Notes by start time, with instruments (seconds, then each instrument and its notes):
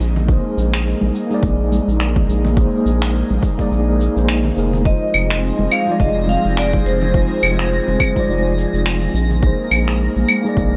Already playing: analog synth pad D#4
0.00 analog synth bass A#1, analog synth pad G#3 A#3, shaker
0.16 low conga, shaker
0.25 tine electric piano A#3 D#4, kick
0.29 tine electric piano G#4 C5, shaker
0.57 analog synth bass A#1, shaker
0.74 finger snap, shaker
0.87 shaker
1.01 analog synth bass A#1, high conga
1.15 shaker
1.27 tine electric piano A#3 D#4, high conga
1.32 tine electric piano G#4 D5, shaker
1.43 analog synth bass A#1, kick, shaker
1.72 high conga, shaker
1.88 analog synth bass A#1, shaker
2.00 finger snap, shaker
2.16 kick, high conga, low conga
2.29 analog synth bass A#1, shaker
2.44 muted conga, low conga, shaker
2.53 tine electric piano A#3 D#4, kick
2.58 tine electric piano G#4 C5, shaker
2.86 analog synth bass A#1, shaker
3.02 finger snap, shaker
3.15 shaker
3.30 analog synth bass A#1, high conga
3.43 kick, shaker
3.58 tine electric piano A#3 D#4 G#4 D5, kick, high conga, shaker
3.71 analog synth bass A#1, shaker
4.01 shaker
4.14 analog synth bass A#1, tine electric piano A#3 D#4 G#4 C5, shaker
4.29 finger snap, shaker
4.45 low conga
4.55 analog synth bass F1, tine electric piano A#3 D#4 G#4 A#4, shaker
4.73 low conga, shaker
4.82 analog synth pad F3 C4 G#4, tine electric piano G#3 D#4, synth texture A#6, kick
4.86 tine electric piano F4 C5, vibraphone D#5, shaker
5.14 analog synth bass F1, claves, shaker
5.30 finger snap, shaker
5.44 shaker
5.59 analog synth bass F1, high conga
5.72 vibraphone F5, claves, shaker
5.84 tine electric piano G#3 D#4, high conga
5.89 tine electric piano F4 D5, shaker
6.00 analog synth bass F1, vibraphone D#5, kick, shaker
6.28 vibraphone F5, high conga, shaker
6.45 analog synth bass F1, shaker
6.57 vibraphone D5, finger snap, shaker
6.73 kick, high conga, low conga
6.86 analog synth bass F1, vibraphone C5, shaker
7.01 muted conga, low conga, shaker
7.10 tine electric piano G#3 D#4, kick
7.15 tine electric piano F4 C5, shaker
7.43 analog synth bass F1, claves, shaker
7.59 finger snap, shaker
7.72 shaker
7.88 analog synth bass F1, high conga
8.00 kick, claves, shaker
8.12 tine electric piano G#3 D#4, kick
8.17 tine electric piano F4 D5, high conga, shaker
8.29 analog synth bass F1, shaker
8.58 shaker
8.73 analog synth bass F1, shaker
8.86 finger snap, shaker
9.02 low conga
9.14 analog synth bass A#1, analog synth pad G#3 A#3, shaker
9.31 low conga, shaker
9.39 tine electric piano A#3 D#4, kick
9.44 tine electric piano G#4 C5, shaker
9.71 analog synth bass A#1, claves, shaker
9.88 finger snap, shaker
10.01 shaker
10.16 analog synth bass A#1, high conga
10.29 claves, shaker
10.41 tine electric piano A#3 D#4, high conga
10.46 tine electric piano G#4 D5, shaker
10.57 analog synth bass A#1, kick, shaker